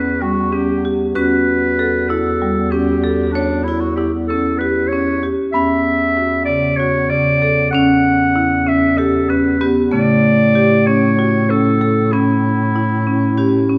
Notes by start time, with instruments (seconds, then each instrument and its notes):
Already playing: bass clarinet E2, marimba C#4, vibraphone C#4, clarinet B4
0.22 marimba G3, clarinet F#4
0.53 marimba C#4, clarinet G4
0.85 marimba G4
1.15 bass clarinet E2, marimba C#4, vibraphone F#4, clarinet B4
1.79 marimba A4
2.08 marimba E4, clarinet A4
2.42 marimba G3
2.71 marimba C#4, clarinet G4
3.04 marimba A4
3.32 clarinet D4, marimba C#5
3.64 clarinet E4
3.68 vibraphone E4
3.80 clarinet F#4
3.96 marimba E4, clarinet G4
4.28 marimba C#4, clarinet A4
4.58 marimba G4, clarinet B4
4.88 clarinet C#5
4.92 marimba C#4
5.23 marimba G4
5.52 bass clarinet E2, marimba B3, vibraphone C#4, clarinet E5
6.17 marimba F#4
6.45 marimba C#3, clarinet D5
6.77 marimba F#4, clarinet C#5
7.10 marimba C#3, clarinet D5
7.42 marimba A4
7.71 bass clarinet E2, marimba C#4, vibraphone C#4, clarinet F#5
8.36 marimba E4
8.67 marimba C#4, clarinet E5
8.98 marimba G4, clarinet A4
9.29 marimba C#4, clarinet B4
9.61 vibraphone B3, marimba G4
9.91 bass clarinet A2, marimba C#3, vibraphone A3, clarinet D5
10.55 marimba G4
10.87 marimba C#4, clarinet C#5
11.19 marimba F#4
11.50 marimba C#4, clarinet A4
11.81 marimba A4
12.12 marimba C#4, clarinet E4
12.76 marimba E4
13.07 marimba C#4
13.38 vibraphone C#4, marimba G4
13.69 marimba C#4